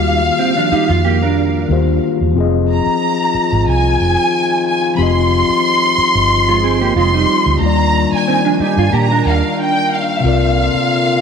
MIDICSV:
0, 0, Header, 1, 7, 480
1, 0, Start_track
1, 0, Tempo, 657174
1, 1721, Time_signature, 4, 2, 24, 8
1, 8189, End_track
2, 0, Start_track
2, 0, Title_t, "Violin section"
2, 0, Program_c, 0, 48
2, 0, Note_on_c, 0, 77, 92
2, 1487, Note_off_c, 0, 77, 0
2, 1986, Note_on_c, 0, 82, 93
2, 2664, Note_off_c, 0, 82, 0
2, 2705, Note_on_c, 0, 80, 102
2, 3413, Note_off_c, 0, 80, 0
2, 3424, Note_on_c, 0, 80, 90
2, 3593, Note_off_c, 0, 80, 0
2, 3621, Note_on_c, 0, 83, 79
2, 3654, Note_off_c, 0, 83, 0
2, 3670, Note_on_c, 0, 84, 120
2, 5093, Note_off_c, 0, 84, 0
2, 5102, Note_on_c, 0, 84, 105
2, 5541, Note_off_c, 0, 84, 0
2, 5572, Note_on_c, 0, 82, 107
2, 5910, Note_off_c, 0, 82, 0
2, 5949, Note_on_c, 0, 80, 95
2, 6289, Note_off_c, 0, 80, 0
2, 6310, Note_on_c, 0, 80, 86
2, 6519, Note_off_c, 0, 80, 0
2, 6540, Note_on_c, 0, 82, 93
2, 6769, Note_off_c, 0, 82, 0
2, 6793, Note_on_c, 0, 77, 80
2, 7015, Note_off_c, 0, 77, 0
2, 7032, Note_on_c, 0, 79, 96
2, 7239, Note_off_c, 0, 79, 0
2, 7264, Note_on_c, 0, 77, 94
2, 8189, Note_off_c, 0, 77, 0
2, 8189, End_track
3, 0, Start_track
3, 0, Title_t, "Tine electric piano"
3, 0, Program_c, 1, 4
3, 0, Control_c, 1, 64, 127
3, 0, Note_on_c, 1, 51, 67
3, 0, Note_on_c, 1, 58, 60
3, 0, Note_on_c, 1, 65, 56
3, 0, Note_on_c, 1, 66, 43
3, 0, Note_on_c, 1, 67, 60
3, 0, Note_on_c, 1, 77, 67
3, 1201, Note_off_c, 1, 51, 0
3, 1207, Note_off_c, 1, 58, 0
3, 1215, Note_off_c, 1, 65, 0
3, 1230, Note_off_c, 1, 77, 0
3, 1232, Note_on_c, 1, 51, 54
3, 1240, Note_on_c, 1, 58, 57
3, 1245, Note_off_c, 1, 67, 0
3, 1247, Note_on_c, 1, 65, 52
3, 1253, Note_on_c, 1, 67, 55
3, 1261, Note_on_c, 1, 72, 64
3, 1698, Note_on_c, 1, 53, 72
3, 1712, Note_on_c, 1, 60, 64
3, 1716, Note_off_c, 1, 51, 0
3, 1718, Note_off_c, 1, 65, 0
3, 1721, Note_off_c, 1, 58, 0
3, 1727, Note_off_c, 1, 67, 0
3, 1727, Note_on_c, 1, 65, 68
3, 1729, Control_c, 1, 64, 0
3, 1731, Note_off_c, 1, 66, 0
3, 1731, Note_off_c, 1, 72, 0
3, 1741, Note_on_c, 1, 68, 69
3, 1756, Note_on_c, 1, 75, 80
3, 1843, Control_c, 1, 64, 127
3, 3600, Note_off_c, 1, 53, 0
3, 3607, Note_off_c, 1, 60, 0
3, 3615, Note_off_c, 1, 65, 0
3, 3616, Note_on_c, 1, 53, 63
3, 3622, Note_off_c, 1, 68, 0
3, 3629, Note_off_c, 1, 75, 0
3, 3630, Note_on_c, 1, 60, 56
3, 3642, Note_on_c, 1, 67, 55
3, 3660, Note_on_c, 1, 65, 53
3, 3672, Note_on_c, 1, 75, 67
3, 5518, Note_off_c, 1, 53, 0
3, 5525, Note_off_c, 1, 60, 0
3, 5531, Note_off_c, 1, 67, 0
3, 5537, Note_on_c, 1, 51, 61
3, 5540, Note_off_c, 1, 65, 0
3, 5546, Note_off_c, 1, 75, 0
3, 5553, Note_on_c, 1, 58, 59
3, 5566, Note_on_c, 1, 65, 54
3, 5570, Control_c, 1, 64, 0
3, 5582, Note_on_c, 1, 55, 60
3, 5595, Note_on_c, 1, 74, 73
3, 5676, Control_c, 1, 64, 127
3, 7437, Note_off_c, 1, 51, 0
3, 7445, Note_off_c, 1, 58, 0
3, 7451, Note_on_c, 1, 48, 64
3, 7452, Note_off_c, 1, 65, 0
3, 7460, Note_off_c, 1, 55, 0
3, 7466, Note_off_c, 1, 74, 0
3, 7470, Note_on_c, 1, 60, 61
3, 7482, Note_on_c, 1, 65, 59
3, 7487, Control_c, 1, 64, 0
3, 7496, Note_on_c, 1, 70, 56
3, 7510, Note_on_c, 1, 74, 67
3, 7629, Control_c, 1, 64, 127
3, 8189, Note_off_c, 1, 48, 0
3, 8189, Note_off_c, 1, 60, 0
3, 8189, Note_off_c, 1, 65, 0
3, 8189, Note_off_c, 1, 70, 0
3, 8189, Note_off_c, 1, 74, 0
3, 8189, End_track
4, 0, Start_track
4, 0, Title_t, "Clean electric guitar"
4, 0, Program_c, 2, 27
4, 0, Note_on_c, 2, 55, 59
4, 0, Note_on_c, 2, 63, 74
4, 141, Note_off_c, 2, 63, 0
4, 143, Note_off_c, 2, 55, 0
4, 285, Note_on_c, 2, 60, 67
4, 289, Note_on_c, 2, 51, 57
4, 406, Note_off_c, 2, 60, 0
4, 408, Note_off_c, 2, 51, 0
4, 414, Note_on_c, 2, 62, 71
4, 420, Note_on_c, 2, 53, 59
4, 517, Note_off_c, 2, 62, 0
4, 520, Note_off_c, 2, 53, 0
4, 525, Note_on_c, 2, 63, 74
4, 532, Note_on_c, 2, 55, 63
4, 646, Note_off_c, 2, 63, 0
4, 650, Note_off_c, 2, 55, 0
4, 653, Note_on_c, 2, 65, 72
4, 757, Note_off_c, 2, 65, 0
4, 763, Note_on_c, 2, 67, 68
4, 768, Note_on_c, 2, 58, 55
4, 885, Note_off_c, 2, 67, 0
4, 888, Note_off_c, 2, 58, 0
4, 895, Note_on_c, 2, 70, 61
4, 900, Note_on_c, 2, 62, 50
4, 1584, Note_off_c, 2, 70, 0
4, 1586, Note_off_c, 2, 62, 0
4, 4738, Note_on_c, 2, 65, 64
4, 4739, Note_on_c, 2, 56, 55
4, 4838, Note_off_c, 2, 65, 0
4, 4840, Note_off_c, 2, 56, 0
4, 4848, Note_on_c, 2, 60, 62
4, 4848, Note_on_c, 2, 68, 66
4, 4966, Note_off_c, 2, 68, 0
4, 4968, Note_off_c, 2, 60, 0
4, 4976, Note_on_c, 2, 58, 62
4, 4977, Note_on_c, 2, 67, 74
4, 5077, Note_off_c, 2, 67, 0
4, 5078, Note_off_c, 2, 58, 0
4, 5088, Note_on_c, 2, 65, 69
4, 5094, Note_on_c, 2, 56, 58
4, 5207, Note_off_c, 2, 65, 0
4, 5211, Note_off_c, 2, 56, 0
4, 5216, Note_on_c, 2, 63, 64
4, 5223, Note_on_c, 2, 55, 59
4, 5545, Note_off_c, 2, 63, 0
4, 5549, Note_off_c, 2, 55, 0
4, 6043, Note_on_c, 2, 60, 70
4, 6050, Note_on_c, 2, 51, 58
4, 6164, Note_off_c, 2, 60, 0
4, 6168, Note_off_c, 2, 51, 0
4, 6172, Note_on_c, 2, 62, 73
4, 6176, Note_on_c, 2, 53, 60
4, 6275, Note_off_c, 2, 62, 0
4, 6277, Note_off_c, 2, 53, 0
4, 6284, Note_on_c, 2, 63, 77
4, 6289, Note_on_c, 2, 55, 65
4, 6404, Note_off_c, 2, 63, 0
4, 6407, Note_off_c, 2, 55, 0
4, 6416, Note_on_c, 2, 65, 82
4, 6517, Note_off_c, 2, 65, 0
4, 6520, Note_on_c, 2, 67, 72
4, 6526, Note_on_c, 2, 58, 59
4, 6643, Note_off_c, 2, 67, 0
4, 6646, Note_off_c, 2, 58, 0
4, 6655, Note_on_c, 2, 70, 67
4, 6660, Note_on_c, 2, 62, 54
4, 7342, Note_off_c, 2, 70, 0
4, 7344, Note_off_c, 2, 62, 0
4, 8189, End_track
5, 0, Start_track
5, 0, Title_t, "French horn section"
5, 0, Program_c, 3, 60
5, 1715, Note_on_c, 3, 53, 60
5, 1719, Note_on_c, 3, 51, 72
5, 1719, Note_on_c, 3, 65, 66
5, 5527, Note_off_c, 3, 53, 0
5, 5529, Note_off_c, 3, 65, 0
5, 5557, Note_on_c, 3, 58, 61
5, 5560, Note_on_c, 3, 62, 70
5, 7448, Note_off_c, 3, 51, 0
5, 7457, Note_off_c, 3, 58, 0
5, 7459, Note_off_c, 3, 62, 0
5, 7483, Note_on_c, 3, 58, 65
5, 7483, Note_on_c, 3, 60, 64
5, 7483, Note_on_c, 3, 65, 82
5, 7486, Note_on_c, 3, 50, 69
5, 8189, Note_off_c, 3, 50, 0
5, 8189, Note_off_c, 3, 58, 0
5, 8189, Note_off_c, 3, 60, 0
5, 8189, Note_off_c, 3, 65, 0
5, 8189, End_track
6, 0, Start_track
6, 0, Title_t, "Fingered electric bass"
6, 0, Program_c, 4, 33
6, 0, Note_on_c, 4, 39, 97
6, 209, Note_off_c, 4, 39, 0
6, 652, Note_on_c, 4, 41, 85
6, 1213, Note_off_c, 4, 41, 0
6, 1238, Note_on_c, 4, 39, 80
6, 1445, Note_off_c, 4, 39, 0
6, 1614, Note_on_c, 4, 40, 72
6, 1707, Note_off_c, 4, 40, 0
6, 1718, Note_on_c, 4, 29, 94
6, 2036, Note_off_c, 4, 29, 0
6, 2574, Note_on_c, 4, 32, 92
6, 2667, Note_off_c, 4, 32, 0
6, 2683, Note_on_c, 4, 36, 86
6, 2888, Note_off_c, 4, 36, 0
6, 2921, Note_on_c, 4, 29, 81
6, 3032, Note_off_c, 4, 29, 0
6, 3639, Note_on_c, 4, 29, 101
6, 3957, Note_off_c, 4, 29, 0
6, 4492, Note_on_c, 4, 31, 86
6, 5052, Note_off_c, 4, 31, 0
6, 5082, Note_on_c, 4, 29, 89
6, 5286, Note_off_c, 4, 29, 0
6, 5450, Note_on_c, 4, 38, 77
6, 5544, Note_off_c, 4, 38, 0
6, 5558, Note_on_c, 4, 39, 96
6, 5875, Note_off_c, 4, 39, 0
6, 6408, Note_on_c, 4, 43, 89
6, 6503, Note_off_c, 4, 43, 0
6, 6520, Note_on_c, 4, 46, 93
6, 6725, Note_off_c, 4, 46, 0
6, 6760, Note_on_c, 4, 39, 86
6, 6870, Note_off_c, 4, 39, 0
6, 7479, Note_on_c, 4, 36, 99
6, 7795, Note_off_c, 4, 36, 0
6, 8189, End_track
7, 0, Start_track
7, 0, Title_t, "Muted fingered electric bass strokes"
7, 524, Note_on_c, 9, 29, 44
7, 597, Note_off_c, 9, 29, 0
7, 2090, Note_on_c, 9, 29, 43
7, 2164, Note_off_c, 9, 29, 0
7, 2441, Note_on_c, 9, 29, 48
7, 2514, Note_off_c, 9, 29, 0
7, 4012, Note_on_c, 9, 29, 43
7, 4085, Note_off_c, 9, 29, 0
7, 4367, Note_on_c, 9, 29, 46
7, 4440, Note_off_c, 9, 29, 0
7, 5931, Note_on_c, 9, 29, 43
7, 6004, Note_off_c, 9, 29, 0
7, 6280, Note_on_c, 9, 29, 45
7, 6353, Note_off_c, 9, 29, 0
7, 7847, Note_on_c, 9, 29, 44
7, 7920, Note_off_c, 9, 29, 0
7, 8189, End_track
0, 0, End_of_file